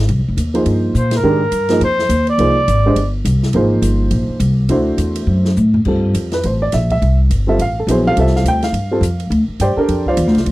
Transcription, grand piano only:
0.54 F3 A#3 D#4 G#4 C5
1.23 D#3 G#3 D4 G4 A#4
1.70 F3 A#3 D#4 G#4 D#5
2.39 F3 A#3 D#4 G#4 C5
2.86 G#3 D4 G4 C5 D#5
3.55 F3 A#3 D#4 G#4 C5
4.69 A3 D4 E4 F#4 C5
5.86 G3 C4 F4 A4
6.34 B4
6.45 C5
6.62 D5
6.74 E5
6.92 E5
7.47 G3 C4 F4 A4 E5
7.62 F5
7.80 A4
7.88 F#3 B3 E4 G#4 C5
8.06 G3 C4 F4 A4 F5
8.18 G3 C4 F4 A4 E5
8.37 F5
8.48 G5
8.64 F5
8.91 G3 C4 F4 A4
9.61 G4 C5 D5 G5
9.77 D4 G4 A4 A#4
10.08 F4 C5 D5 F5

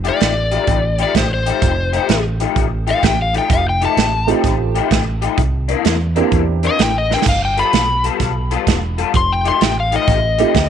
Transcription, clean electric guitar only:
0.04 F3 A3 D#4 G4
0.51 F3 A3 D#4 G4
0.99 F3 A3 D#4 G4
1.46 F3 A3 D#4 G4
1.93 F3 A3 D#4 G4
2.40 F3 A3 D#4 G4
2.87 F3 A3 D#4 G4
3.34 F3 A3 D#4 G4
3.81 F3 A3 D#4 G4
4.28 F3 A3 D#4 G4
4.75 F3 A3 D#4 G4
5.21 F3 A3 D#4 G4
5.68 C3 E3 A#3 D4
6.16 C3 E3 A#3 D4
6.63 C3 E3 A#3 D4
7.10 C3 E3 A#3 D4
7.57 G3 B3 F4 A4
8.04 G3 B3 F4 A4
8.51 G3 B3 F4 A4
8.98 G3 B3 F4 A4
9.45 F3 A3 D#4 G4
9.91 F3 A3 D#4 G4
10.38 F3 A3 D#4 G4

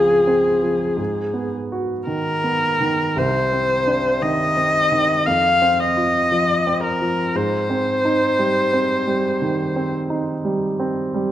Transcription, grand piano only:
Already playing: C#2 F3 C4 F4
0.27 C4
0.63 F3
0.97 G#2
1.34 B3
1.72 F#4
2.07 D#3
2.44 B3
2.81 D#3
3.16 C2
3.53 C4
3.87 D4
4.22 D#3
4.57 C4
4.92 D#3
5.27 F2
5.62 C4
5.97 F4
6.32 F3
6.67 C4
7.01 F3
7.35 G#2
7.70 C4
8.05 D#4
8.39 G3
8.73 C4
9.07 G3
9.42 D#3
9.76 C4
10.10 D#4
10.45 G3
10.80 C4
11.14 G3

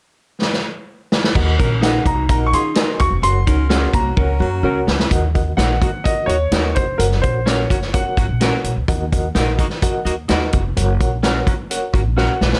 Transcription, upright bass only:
1.35 D#2
1.59 A#1
2.05 C2
2.29 A#1
2.52 D#3
3.00 D#2
3.11 F1
3.22 F#1
3.47 C#2
3.93 C2
4.17 C#2
4.40 F#2
4.63 C#2
4.87 C#2
5.11 D#2
5.57 A#1
5.82 D#3
6.28 D#2
6.52 D#2
6.76 F1
6.99 F#1
7.23 A#1
7.70 F#1
8.17 G#1
8.29 A#1
8.64 A#1
8.76 C#2
8.88 D#2
9.35 A#1
9.59 D#3
10.05 D#2
10.30 D#2
10.53 F1
10.77 F#1
11.01 A#1
11.46 F#1
11.93 G#1
12.06 A#1
12.41 A#1
12.53 C#2

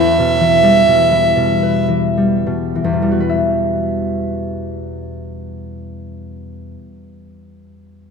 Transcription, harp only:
Already playing: E2 C#4 E4
0.19 B2
0.40 E3
0.63 G3
0.88 B2
1.11 E3
1.36 B2
1.63 B4
1.88 E3
2.17 G3
2.46 B2
2.75 E3
2.84 E2
2.93 B2
3.02 G3
3.11 F#4
3.20 B4
3.29 E5

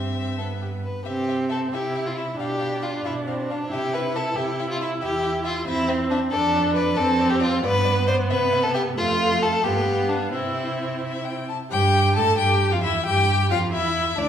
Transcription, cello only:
Already playing: G2
1.06 C3
1.72 C3
2.38 B2
3.05 B2
3.72 C3
4.37 C3
5.02 E2
5.67 E2
6.33 F2
6.99 F2
7.64 G2
8.30 C3
8.97 F2
9.65 G2
10.34 C3
11.72 G2
12.16 A2
12.39 G2
12.72 F2
12.83 E2
13.06 G2
13.51 F2
13.73 E2
14.17 D2

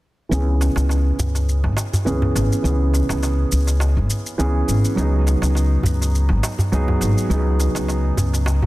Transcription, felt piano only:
0.29 E3 B3 C#4
0.33 G#4
2.05 E3 B3 C#4 G#4
2.62 E3 B3 C#4
2.66 G#4
4.38 E3 B3 C#4 G#4
4.95 F#3 B3 D#4 G#4
6.72 F#3 B3 D#4 G#4
7.29 F#3 B3 D#4
7.33 G#4

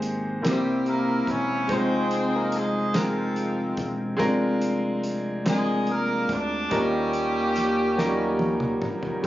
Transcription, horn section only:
0.46 G3 A#3 E4 G4
0.88 A#3 A#4
1.30 C#4 C#5
1.72 C4 D#4 G#4 C5
2.35 A#3 A#4
2.57 G#3 G#4
2.98 F3 G#3 C4 F4
5.49 G#3 G#4
5.91 A#3 A#4
6.33 D4 D5
6.74 G3 A#3 C#4 G4

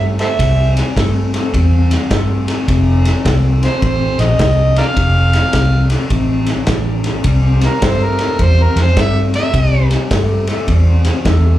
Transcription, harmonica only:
0.20 A4 C5 E5
3.64 C5
3.84 C5
4.21 D#5
4.78 A#4 D5 F5
7.66 A#4
7.84 C5
8.04 A#4
8.43 C5
8.63 A#4
8.82 C5
9.01 E5
9.36 E5

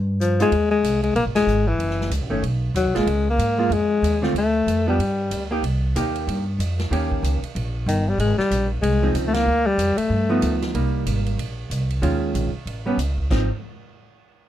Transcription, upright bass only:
Already playing: G2
0.51 D#2
0.83 C2
1.15 A#1
1.25 G#1
1.36 F1
1.47 G#1
1.79 F#1
2.10 C#2
2.21 A1
2.32 F#1
2.42 B1
2.74 D#2
2.85 B1
2.96 A1
3.06 C#2
3.38 G#2
3.70 F2
4.02 D#2
4.34 D2
4.67 F2
4.99 G2
5.31 D2
5.63 C2
5.95 D#2
6.27 G2
6.59 F2
6.91 D#2
7.23 C#2
7.42 muted upright bass stroke
7.55 A#1
7.86 G1
8.18 G#1
8.51 A#1
8.82 C2
9.15 C#2
9.46 D2
9.78 F2
9.97 muted upright bass stroke
10.09 G2
10.42 D2
10.74 C2
11.06 G#1
11.37 A#1
11.70 C2
12.02 D#2
12.34 A#1
12.54 muted upright bass stroke
12.66 A1
12.97 C#2
13.30 G#1

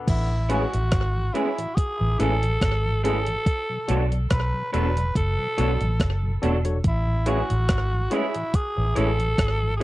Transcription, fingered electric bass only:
0.08 A1
0.74 A1
0.93 G#1
2.01 A1
2.20 A1
2.62 G#1
3.90 B1
4.31 B1
4.74 E1
5.16 F#1
5.59 B1
5.81 A1
6.00 F#1
6.43 E1
6.85 A1
7.51 A1
7.70 G#1
8.78 A1
8.97 A1
9.39 G#1

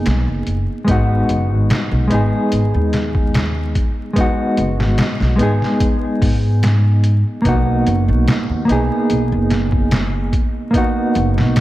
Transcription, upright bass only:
0.06 B1
0.28 F#1
0.47 F#1
0.88 G#1
1.30 F#1
1.51 G#1
1.91 B1
2.11 G#1
2.52 G#1
2.74 D#2
4.58 F#1
4.80 G#1
5.21 B1
5.40 G#1
6.22 G#2
7.45 B1
7.87 F#1
8.08 B1
8.50 D#2
8.69 B1
9.10 B1
9.32 F#1
11.16 F#1
11.38 B1

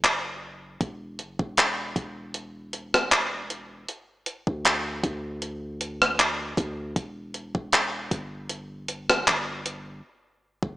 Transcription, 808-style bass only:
Already playing: F#1
0.81 E1
1.20 F#1
1.40 E1
1.96 E1
4.48 D2
5.04 D2
6.58 D2
6.96 E1
7.55 E1
8.12 G1
9.28 G1
10.63 F#1

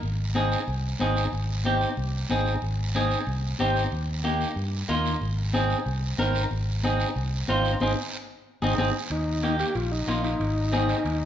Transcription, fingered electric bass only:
0.03 G#1
0.68 C2
1.00 G#1
1.32 G#1
1.97 C2
2.30 G#1
2.62 G#1
3.27 C2
3.59 G#1
3.92 D#2
4.56 G2
4.89 D#2
5.21 G#1
5.86 C2
6.18 G#1
6.51 G#1
7.16 C2
7.48 G#1
7.81 G#1
8.62 G#1
8.78 G#1
9.10 D#2
9.75 A#1
10.07 A#1
10.40 G#1
11.05 D#2

